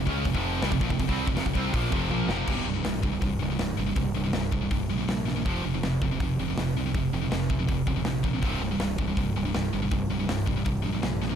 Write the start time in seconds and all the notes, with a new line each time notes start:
0.05 C#2 C#3 G#3 C#4, kick
0.24 F1 F2 C3, kick, open hi-hat
0.33 F1 F2 C3 F3, kick
0.62 C2 C3 G3, snare, open hi-hat
0.71 F1 F2 C3, kick
0.81 A#1 A#2 F3, kick
0.90 F1 F2 C3, kick
0.99 F1 F2 C3, kick, open hi-hat
1.08 C2 C3 G3 C4, kick
1.27 F1 F2 C3, kick
1.36 F1 F2 C3, snare, open hi-hat
1.45 F1 F2 C3, kick
1.53 C2 C3 G3 C4, kick
1.72 A#1 A#2 F3 A#3, kick, open hi-hat
1.91 F1 F2 C3 F3, kick
2.10 A#1 A#2 F3 A#3, high tom
2.28 F1 F2 C3 F3, snare
2.47 C1 C2 G2 C3, kick, crash
2.65 C1 C2 G2
2.74 C2 G2
2.83 C1 C2 G2, snare, open hi-hat
3.02 C1 C2 G2, kick
3.12 C2 G2
3.21 C1 C2 G2, kick, open hi-hat
3.39 C1 C2 G2
3.50 C2 G2
3.59 C1 C2 G2, snare, open hi-hat
3.77 G1 C2 G2
3.86 C2 G2
3.96 C1 C2 G2, kick, open hi-hat
4.15 C1 C2 G2
4.24 C2 G2
4.33 C1 C2 G2, snare, open hi-hat
4.52 C2 G2, kick
4.61 C2 G2
4.71 C1 C2 G2, kick, open hi-hat
4.89 A#1 C2 G2
4.98 C2 G2
5.08 A#1 C2 G2, snare, open hi-hat
5.26 C2 G2, snare
5.36 C2 G2
5.45 F1 F2 C3 F3, kick, open hi-hat
5.65 F1 F2 C3
5.74 F2 C3
5.83 F1 F2 C3, snare, open hi-hat
6.02 F1 F2 C3, kick
6.12 F2 C3
6.20 F1 F2 C3, kick, open hi-hat
6.39 F1 F2 C3
6.50 F2 C3
6.57 F1 F2 C3, snare, open hi-hat
6.75 C2 F2 C3
6.86 F2 C3
6.94 F1 F2 C3, kick, open hi-hat
7.13 F1 F2 C3
7.22 F2 C3
7.31 F1 F2 C3, snare, open hi-hat
7.41 snare
7.50 F2 C3, kick
7.59 F2 C3
7.67 F1 F2 C3, kick, open hi-hat
7.87 D#1 F2 C3, kick
7.96 F2 C3
8.04 A#1 F2 C3, snare, open hi-hat
8.23 F2 C3, kick
8.33 F2 C3
8.42 C1 C2 G2 C3, kick, open hi-hat
8.60 C1 C2 G2
8.71 C2 G2
8.79 C1 C2 G2, snare, open hi-hat
8.98 C1 C2 G2, kick
9.08 C2 G2
9.17 C1 C2 G2, kick, open hi-hat
9.36 C1 C2 G2
9.45 C2 G2
9.54 C1 C2 G2, snare, open hi-hat
9.73 G1 C2 G2
9.82 C2 G2
9.91 C1 C2 G2, kick, open hi-hat
10.10 C1 C2 G2
10.19 C2 G2
10.29 C1 C2 G2, snare, open hi-hat
10.46 C2 G2, kick
10.56 C2 G2
10.65 C1 C2 G2, kick, open hi-hat
10.82 A#1 C2 G2
10.93 C2 G2
11.02 A#1 C2 G2, snare, open hi-hat
11.22 C2 G2, snare
11.29 C2 G2